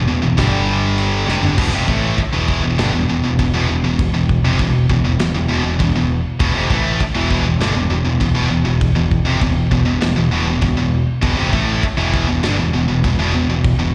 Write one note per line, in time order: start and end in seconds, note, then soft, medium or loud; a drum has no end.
0.08 0.22 E1 medium
0.08 0.22 E2 medium
0.08 0.22 B2 medium
0.23 0.37 E1 medium
0.23 0.38 E2 medium
0.23 0.38 B2 medium
0.38 1.24 G1 loud
0.38 1.28 G2 loud
0.38 1.28 D3 loud
0.38 1.28 G3 loud
0.38 kick loud
0.38 snare loud
0.38 china medium
0.98 china medium
1.28 1.42 F1 medium
1.28 1.43 F2 medium
1.28 1.43 C3 loud
1.28 snare medium
1.43 1.57 G1 medium
1.43 1.58 G2 medium
1.43 1.58 D3 loud
1.43 floor tom loud
1.58 1.72 E1 loud
1.58 1.73 E2 medium
1.58 1.73 B2 loud
1.58 kick loud
1.58 crash loud
1.58 crash medium
1.74 1.87 F1 loud
1.74 1.88 F2 medium
1.74 1.88 C3 medium
1.88 2.16 A1 medium
1.88 2.18 A2 loud
1.88 2.19 E3 medium
1.88 2.19 A3 loud
1.88 kick medium
2.18 muted picked electric bass stroke soft
2.18 muted distorted electric guitar stroke medium
2.18 kick medium
2.18 crash medium
2.34 2.62 E1 medium
2.34 2.62 E2 medium
2.34 2.62 B2 medium
2.34 2.64 E3 medium
2.48 kick medium
2.63 2.78 E1 medium
2.63 2.78 E2 medium
2.63 2.79 B2 medium
2.78 2.93 G1 medium
2.78 2.93 G2 medium
2.78 2.93 D3 medium
2.78 snare loud
2.78 crash medium
2.93 3.08 E1 medium
2.93 3.08 E2 medium
2.93 3.08 B2 medium
3.09 3.24 E2 medium
3.09 3.24 B2 medium
3.24 3.38 E1 medium
3.24 3.39 E2 medium
3.24 3.39 B2 medium
3.39 3.53 E1 medium
3.39 3.54 E2 medium
3.39 3.54 B2 medium
3.39 kick medium
3.39 crash medium
3.54 3.68 E1 medium
3.54 3.69 E2 loud
3.54 3.69 B2 loud
3.69 3.83 E1 medium
3.69 3.84 E2 medium
3.69 3.84 B2 medium
3.84 4.12 E1 medium
3.84 4.09 E2 medium
3.84 4.09 B2 medium
3.99 kick loud
3.99 crash medium
4.14 4.42 E1 medium
4.14 4.39 E2 medium
4.14 4.39 B2 medium
4.29 kick medium
4.45 4.59 F1 loud
4.45 4.59 F2 medium
4.45 4.59 C3 loud
4.59 4.83 E2 medium
4.59 4.84 B2 medium
4.59 kick medium
4.59 crash medium
4.89 5.04 E1 medium
4.89 5.03 E2 medium
4.89 5.04 B2 medium
4.89 kick medium
5.04 5.18 E1 medium
5.04 5.20 E2 medium
5.04 5.20 B2 medium
5.18 5.33 E1 medium
5.18 5.35 E2 medium
5.18 5.35 B2 medium
5.18 snare loud
5.18 crash medium
5.34 5.48 E1 medium
5.34 5.49 E2 medium
5.34 5.50 B2 medium
5.49 5.63 E1 loud
5.49 5.64 E2 medium
5.49 5.65 B2 loud
5.64 5.78 E1 medium
5.64 5.79 E2 medium
5.64 5.80 B2 medium
5.80 5.94 E1 medium
5.80 5.94 E2 medium
5.80 5.95 B2 medium
5.80 kick medium
5.80 crash medium
5.95 6.23 E1 medium
5.95 6.19 E2 medium
5.95 6.20 B2 medium
6.40 6.53 E1 loud
6.40 6.54 E2 loud
6.40 6.55 B2 loud
6.40 kick loud
6.40 crash medium
6.54 6.69 F1 loud
6.54 6.69 F2 medium
6.54 6.70 C3 loud
6.70 6.98 A1 medium
6.70 7.00 A2 medium
6.70 7.00 E3 medium
6.70 7.00 A3 loud
6.70 kick medium
7.00 muted picked electric bass stroke soft
7.00 muted distorted electric guitar stroke medium
7.00 kick medium
7.00 crash medium
7.14 7.43 E1 medium
7.14 7.44 E2 medium
7.14 7.45 B2 medium
7.14 7.45 E3 loud
7.31 kick medium
7.45 7.59 E1 medium
7.45 7.60 E2 medium
7.45 7.61 B2 medium
7.60 7.74 G1 loud
7.60 7.75 G2 loud
7.60 7.75 D3 loud
7.60 snare loud
7.60 crash medium
7.75 7.89 E1 medium
7.75 7.90 E2 medium
7.75 7.90 B2 medium
7.89 8.04 E1 medium
7.89 8.04 E2 medium
7.89 8.05 B2 medium
8.05 8.20 E1 medium
8.05 8.19 E2 medium
8.05 8.20 B2 medium
8.21 8.34 E1 medium
8.21 8.34 E2 medium
8.21 8.35 B2 medium
8.21 kick medium
8.21 crash medium
8.35 8.49 E1 medium
8.35 8.50 E2 medium
8.35 8.50 B2 loud
8.50 8.65 E1 medium
8.50 8.64 E2 medium
8.50 8.64 B2 medium
8.65 8.95 E1 medium
8.65 8.90 E2 medium
8.65 8.90 B2 medium
8.81 kick loud
8.81 crash medium
8.96 9.24 E1 medium
8.96 9.20 E2 medium
8.96 9.20 B2 medium
9.11 kick medium
9.26 9.41 F1 loud
9.26 9.41 F2 medium
9.26 9.41 C3 loud
9.41 9.69 E1 medium
9.41 9.66 E2 medium
9.41 9.66 B2 medium
9.41 kick medium
9.41 crash medium
9.71 9.86 E1 medium
9.71 9.85 E2 medium
9.71 9.86 B2 medium
9.71 kick medium
9.86 10.01 E1 medium
9.86 10.01 E2 medium
9.86 10.01 B2 medium
10.01 10.16 E1 medium
10.01 10.16 E2 medium
10.01 10.17 B2 medium
10.01 snare loud
10.01 crash medium
10.17 10.31 E1 medium
10.17 10.31 E2 medium
10.17 10.31 B2 medium
10.32 10.46 E1 loud
10.32 10.46 E2 medium
10.32 10.46 B2 medium
10.47 10.61 E1 medium
10.47 10.61 E2 medium
10.47 10.62 B2 medium
10.62 10.76 E1 medium
10.62 10.77 E2 medium
10.62 10.77 B2 medium
10.62 kick medium
10.62 crash medium
10.78 11.06 E1 medium
10.78 11.02 E2 medium
10.78 11.02 B2 medium
11.22 11.37 E1 medium
11.22 11.37 E2 medium
11.22 11.37 B2 loud
11.22 kick loud
11.22 crash medium
11.38 11.52 F1 medium
11.38 11.52 F2 loud
11.38 11.52 C3 loud
11.53 11.81 A1 medium
11.53 11.82 A2 medium
11.53 11.82 E3 medium
11.53 11.82 A3 loud
11.53 kick medium
11.83 muted distorted electric guitar stroke medium
11.83 kick medium
11.83 crash medium
11.98 12.26 E1 medium
11.98 12.27 E2 medium
11.98 12.27 B2 medium
11.98 12.28 E3 medium
12.14 kick medium
12.28 12.42 E1 medium
12.28 12.43 E2 medium
12.28 12.44 B2 medium
12.43 12.57 G1 loud
12.43 12.58 G2 medium
12.43 12.58 D3 loud
12.43 snare loud
12.43 crash medium
12.59 12.73 E1 medium
12.59 12.72 E2 medium
12.59 12.73 B2 medium
12.74 12.87 E1 medium
12.74 12.87 E2 medium
12.74 12.87 B2 medium
12.88 13.02 E1 medium
12.88 13.02 E2 medium
12.88 13.03 B2 medium
13.04 13.18 E1 medium
13.04 13.18 E2 medium
13.04 13.18 B2 medium
13.04 kick medium
13.04 crash medium
13.18 13.33 E1 loud
13.18 13.33 E2 loud
13.18 13.33 B2 loud
13.34 13.48 E1 medium
13.34 13.48 E2 medium
13.34 13.48 B2 medium
13.49 13.77 E1 medium
13.49 13.73 E2 medium
13.49 13.73 B2 medium
13.64 kick loud
13.64 crash medium
13.78 13.95 E1 medium
13.78 13.95 E2 medium
13.78 13.95 B2 medium